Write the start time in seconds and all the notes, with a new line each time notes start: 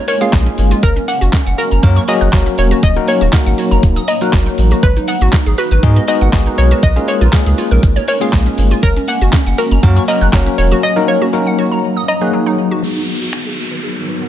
Already playing: G#3 A#3 C#4
0.08 A#4 C#5, open hi-hat, shaker
0.21 G#3 A#3 C#4 F4 G#4 F5, closed hi-hat, shaker
0.33 A#1 G#3, kick, snare, clap, closed hi-hat, shaker
0.46 C#4, closed hi-hat, shaker
0.58 G1, open hi-hat, shaker
0.71 F4, closed hi-hat, shaker
0.83 F#1 F#3 A#4, kick, closed hi-hat, shaker
0.96 C#4, closed hi-hat, shaker
1.08 A#3 F#5, open hi-hat, shaker
1.21 F#1 F#4, closed hi-hat, shaker
1.33 C#4, kick, snare, clap, closed hi-hat, shaker
1.46 F#1 F#5, closed hi-hat, shaker
1.58 F#4 A#4, open hi-hat, shaker
1.71 F#1 A#5, closed hi-hat, shaker
1.83 F#2 F#3 A#3 C#4 F#4 A#4, kick, closed hi-hat, shaker
1.96 C#6, closed hi-hat, shaker
2.08 F#3 A#3 C#4 F#4 G#4 D#5 A#5, open hi-hat, shaker
2.21 F#1 F#6, closed hi-hat, shaker
2.33 F#1 F#3 A#3 C#4 F#4 A#4, kick, snare, clap, closed hi-hat, shaker
2.46 C#4, closed hi-hat, shaker
2.58 E1 C#5, open hi-hat, shaker
2.71 F#4, closed hi-hat, shaker
2.83 D#1 F#3 D#4 D#5, kick, closed hi-hat, shaker
2.96 F#3 A#3 D#4 F#4 A#4, closed hi-hat, shaker
3.08 A#3 C#5, open hi-hat, shaker
3.21 D#1 F#4, closed hi-hat, shaker
3.33 F#3 A#3 D#4 F#4 A#4, kick, snare, clap, closed hi-hat, shaker
3.46 G#1 F#5, closed hi-hat, shaker
3.58 F#4, open hi-hat, shaker
3.71 F#1 A#5, closed hi-hat, shaker
3.83 D#1, kick, closed hi-hat, shaker
3.96 D#6, closed hi-hat, shaker
4.08 D#5 A#5, open hi-hat, shaker
4.21 F#3 A#3 D#4 F#4 A#4 F#6, closed hi-hat, shaker
4.33 F#1 F#3, kick, snare, clap, closed hi-hat, shaker
4.46 D#4, closed hi-hat, shaker
4.58 A1, open hi-hat, shaker
4.71 F#4, closed hi-hat, shaker
4.83 G#1 G#3 F#4 A#4 B4, kick, closed hi-hat, shaker
4.97 D#4, closed hi-hat, shaker
5.08 B3 F#5, open hi-hat, shaker
5.21 G#1 F#4, closed hi-hat, shaker
5.33 D#4, kick, snare, clap, closed hi-hat, shaker
5.46 G#1 G#4, closed hi-hat, shaker
5.58 F#4 B4, open hi-hat, shaker
5.71 G#1 B4, closed hi-hat, shaker
5.83 G#2 G#3 B3 D#4 F#4 G#4, kick, closed hi-hat, shaker
5.96 D#5, closed hi-hat, shaker
6.08 G#3 B3 D#4 F#4 G#4 B4 D#5, open hi-hat, shaker
6.21 G#1 F#5, closed hi-hat, shaker
6.33 G#1 G#3 B3 D#4 F#4 G#4, kick, snare, clap, closed hi-hat, shaker
6.46 D#4, closed hi-hat, shaker
6.58 B1 C#5, open hi-hat, shaker
6.71 F#4, closed hi-hat, shaker
6.83 A#1 G#3 A#3 C#4 D#5, kick, closed hi-hat, shaker
6.96 G#3 A#3 C#4 F4 G#4, closed hi-hat, shaker
7.08 A#3 C#5, open hi-hat, shaker
7.21 A#1 F4, closed hi-hat, shaker
7.33 G#3 A#3 C#4 F4 G#4, kick, snare, clap, closed hi-hat, shaker
7.46 C#2 G#4, closed hi-hat, shaker
7.58 F4, open hi-hat, shaker
7.71 A#1 A#4, closed hi-hat, shaker
7.83 G#1, kick, closed hi-hat, shaker
7.96 C#5, closed hi-hat, shaker
8.08 A#4 C#5, open hi-hat, shaker
8.21 G#3 A#3 C#4 F4 G#4 F5, closed hi-hat, shaker
8.33 A#1 G#3, kick, snare, clap, closed hi-hat, shaker
8.46 C#4, closed hi-hat, shaker
8.58 G1, open hi-hat, shaker
8.71 F4, closed hi-hat, shaker
8.83 F#1 F#3 A#4, kick, closed hi-hat, shaker
8.96 C#4, closed hi-hat, shaker
9.08 A#3 F#5, open hi-hat, shaker
9.21 F#1 F#4, closed hi-hat, shaker
9.33 C#4, kick, snare, clap, closed hi-hat, shaker
9.46 F#1 F#5, closed hi-hat, shaker
9.58 F#4 A#4, open hi-hat, shaker
9.71 F#1 A#5, closed hi-hat, shaker
9.83 F#2 F#3 A#3 C#4 F#4 A#4, kick, closed hi-hat, shaker
9.96 C#6, closed hi-hat, shaker
10.08 F#3 A#3 C#4 F#4 A#4 D#5 A#5, open hi-hat, shaker
10.21 F#1 F#6, closed hi-hat, shaker
10.33 F#1 F#3 A#3 C#4 F#4 A#4, kick, snare, clap, closed hi-hat, shaker
10.46 C#4, closed hi-hat, shaker
10.58 E1 C#5, open hi-hat, shaker
10.71 F#4, closed hi-hat, shaker
10.83 F#3 D#4 D#5
10.96 F#3 A#3 D#4 F#4 A#4
11.08 A#3 C#5
11.22 F#4
11.33 F#3 A#3 D#4 F#4 A#4
11.47 F#5
11.58 F#4
11.72 A#5
11.97 D#6
12.08 D#5 A#5
12.21 F#3 A#3 D#4 F#4 G#4 F#6
12.33 F#3
12.46 D#4
12.71 F#4
12.82 G#2 D#3 F#3 G#3 B3 D#4 F#4 G#4 A#4, downlifter
12.96 D#4
13.08 B3
13.21 F#4
13.33 D#4, finger snap
13.46 G#4
13.58 F#4
13.71 B4
13.83 G#4
14.08 B4
14.21 F#5